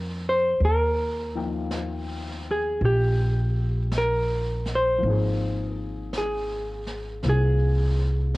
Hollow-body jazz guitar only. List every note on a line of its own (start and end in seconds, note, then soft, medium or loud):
0.00 0.29 A#4 medium
0.29 0.63 C5 medium
0.65 2.54 A#4 medium
2.51 2.85 G#4 medium
2.85 3.97 G4 medium
3.98 4.73 A#4 medium
4.75 5.78 C5 medium
6.18 7.28 G#4 medium
7.29 8.37 G#4 medium